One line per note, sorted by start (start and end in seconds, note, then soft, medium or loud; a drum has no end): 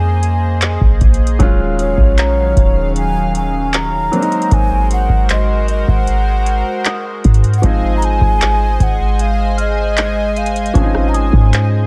0.00 0.78 F2 loud
0.00 1.35 G#3 medium
0.00 1.37 A#3 medium
0.00 1.36 C4 medium
0.00 1.36 C#4 medium
0.00 1.37 D#4 medium
0.00 4.09 G#4 medium
0.00 1.37 C5 medium
0.00 1.36 D#5 medium
0.00 0.82 G#5 loud
0.00 1.32 D#6 medium
0.23 closed hi-hat medium
0.62 clap loud
0.62 closed hi-hat medium
0.81 1.00 A#1 loud
0.81 kick medium
1.01 1.39 A#1 loud
1.01 kick loud
1.01 closed hi-hat soft
1.01 open hi-hat medium
1.14 closed hi-hat medium
1.27 closed hi-hat medium
1.39 1.96 D#1 loud
1.39 4.10 D#3 medium
1.39 4.08 F#3 medium
1.39 4.10 F#3 medium
1.39 4.09 G#3 medium
1.39 4.10 C#4 medium
1.39 4.09 C#4 medium
1.39 4.10 F4 medium
1.39 4.10 F5 medium
1.39 kick loud
1.39 closed hi-hat medium
1.79 2.93 C#5 loud
1.79 closed hi-hat medium
1.98 2.54 A#1 loud
1.98 kick loud
2.18 4.05 A#5 medium
2.18 clap loud
2.18 closed hi-hat medium
2.57 4.09 D#1 loud
2.57 kick medium
2.57 closed hi-hat medium
2.96 3.33 G#5 loud
2.96 closed hi-hat medium
3.35 3.77 G#5 medium
3.35 closed hi-hat medium
3.74 4.55 A#5 loud
3.74 clap loud
3.74 closed hi-hat medium
4.12 7.20 F#3 medium
4.12 7.60 G#3 medium
4.12 7.20 A#3 medium
4.12 7.21 C4 medium
4.12 4.20 D4 medium
4.12 7.60 F#4 medium
4.12 7.60 A#4 medium
4.12 7.60 C5 medium
4.12 closed hi-hat medium
4.21 7.25 D#4 medium
4.21 closed hi-hat medium
4.32 closed hi-hat medium
4.42 closed hi-hat medium
4.51 5.08 G#1 loud
4.51 4.92 G#5 loud
4.51 kick loud
4.51 closed hi-hat medium
4.91 5.28 F#5 loud
4.91 closed hi-hat medium
5.09 5.85 G#1 loud
5.09 kick loud
5.29 5.67 D#5 medium
5.29 7.16 C6 medium
5.29 clap loud
5.29 closed hi-hat medium
5.68 5.91 D#5 medium
5.68 closed hi-hat medium
5.88 6.63 G#1 loud
5.88 7.06 F#5 medium
5.88 kick loud
6.07 closed hi-hat medium
6.46 closed hi-hat medium
6.85 7.98 D#6 medium
6.85 clap loud
6.85 closed hi-hat medium
7.24 7.62 G#2 loud
7.24 kick loud
7.24 closed hi-hat medium
7.24 open hi-hat medium
7.34 closed hi-hat medium
7.44 closed hi-hat medium
7.54 closed hi-hat medium
7.58 7.67 F#5 medium
7.62 8.20 G#1 loud
7.62 10.70 F3 medium
7.62 10.71 G#3 medium
7.62 11.87 G#3 medium
7.62 10.71 C4 medium
7.62 10.72 D#4 medium
7.62 11.87 G#4 medium
7.62 11.87 C5 medium
7.62 11.87 D#5 medium
7.62 7.96 F5 loud
7.62 11.87 G#5 medium
7.62 kick loud
7.62 closed hi-hat medium
7.97 8.06 A#5 medium
8.02 8.85 G#5 loud
8.02 closed hi-hat medium
8.21 8.78 G#1 loud
8.21 kick loud
8.41 clap loud
8.41 closed hi-hat medium
8.80 10.71 G#1 loud
8.80 9.23 F#5 loud
8.80 kick loud
8.80 closed hi-hat medium
9.19 9.59 F5 loud
9.19 closed hi-hat medium
9.58 10.39 D#5 loud
9.58 11.45 F6 medium
9.58 closed hi-hat medium
9.97 clap loud
9.97 closed hi-hat medium
10.36 11.10 F5 loud
10.36 closed hi-hat medium
10.46 closed hi-hat medium
10.56 closed hi-hat medium
10.66 closed hi-hat medium
10.74 11.31 G#1 loud
10.74 11.87 F3 medium
10.74 11.87 G#3 medium
10.74 11.87 C4 medium
10.74 10.83 C#4 medium
10.74 kick loud
10.74 closed hi-hat medium
10.83 11.87 D#4 medium
10.95 cross-stick medium
11.09 11.17 A#5 medium
11.14 11.66 G#5 loud
11.14 11.87 D#6 medium
11.14 closed hi-hat medium
11.33 11.87 G#2 loud
11.33 kick loud
11.53 clap loud
11.53 closed hi-hat medium